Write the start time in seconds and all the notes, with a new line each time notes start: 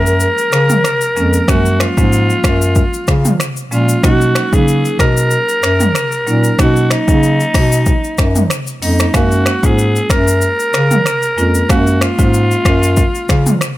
Already playing: F#2 A#4
0.06 shaker
0.20 shaker
0.38 shaker
0.52 C#3, finger snap, cross-stick, shaker
0.70 mid tom, shaker
0.84 finger snap, cross-stick, shaker
1.01 shaker
1.16 F2 F3 G#3 A#3 C#4, shaker
1.33 shaker
1.48 F#2 F#3 G#3 A#3 C#4 F#4, finger snap, kick, cross-stick, shaker
1.66 shaker
1.80 F4, finger snap, cross-stick, shaker
1.97 G#2 F3 G#3 A#3 C#4, kick, shaker
2.13 shaker
2.30 shaker
2.44 F#2, finger snap, kick, cross-stick, shaker
2.62 shaker
2.75 kick, shaker
2.94 shaker
3.07 C#3, finger snap, kick, cross-stick, shaker
3.25 mid tom, shaker
3.40 finger snap, cross-stick, shaker
3.57 shaker
3.71 A#2 F3 G#3 A#3 C#4 F4, shaker
3.89 shaker
4.03 B2 F#3 A#3 C#4 D#4 F#4, finger snap, kick, cross-stick, shaker
4.21 shaker
4.35 finger snap, cross-stick, shaker
4.53 C#3 F#3 A#3 C#4 D#4 G#4, kick, shaker
4.68 shaker
4.85 shaker
4.99 B2 A#4, finger snap, kick, cross-stick, shaker
5.17 shaker
5.31 shaker
5.49 shaker
5.63 F#2, finger snap, cross-stick, shaker
5.80 mid tom, shaker
5.95 finger snap, cross-stick, shaker
6.12 shaker
6.27 A#2 F#3 A#3 C#4 D#4, shaker
6.44 shaker
6.59 B2 F#3 A#3 C#4 D#4 F#4, finger snap, kick, cross-stick, shaker
6.76 shaker
6.90 D#4, finger snap, cross-stick, shaker
7.08 C#3 F#3 A#3 C#4 D#4, kick, shaker
7.23 shaker
7.40 shaker
7.54 B2, finger snap, kick, cross-stick, open hi-hat, shaker
7.72 shaker
7.86 kick, shaker
8.04 shaker
8.18 F#2, finger snap, kick, cross-stick, shaker
8.35 mid tom, shaker
8.50 finger snap, cross-stick, shaker
8.67 shaker
8.82 F2 F#3 A#3 C#4 D#4, open hi-hat, shaker
8.99 finger snap, cross-stick, shaker
9.14 F#2 G#3 A#3 C#4 F#4 F5, finger snap, kick, cross-stick, shaker
9.31 shaker
9.46 finger snap, cross-stick, shaker
9.63 G#2 G#3 A#3 C#4 F4 G#4, kick, shaker
9.78 shaker
9.96 shaker
10.10 F#2 A#4, finger snap, kick, cross-stick, shaker
10.28 shaker
10.41 shaker
10.60 shaker
10.73 C#3, finger snap, cross-stick, shaker
10.91 mid tom, shaker
11.06 finger snap, cross-stick, shaker
11.22 shaker
11.37 F2 G#3 A#3 C#4 F4, shaker
11.55 shaker
11.69 F#2 G#3 A#3 C#4 F#4 F5, finger snap, kick, cross-stick, shaker
11.87 shaker
12.01 F4, finger snap, cross-stick, shaker
12.19 G#2 G#3 A#3 C#4 F4, kick, shaker
12.34 shaker
12.51 shaker
12.65 F#2, finger snap, kick, cross-stick, shaker
12.83 shaker
12.97 kick, shaker
13.15 shaker
13.29 C#3, finger snap, kick, cross-stick, shaker
13.46 mid tom, shaker
13.61 finger snap, cross-stick, shaker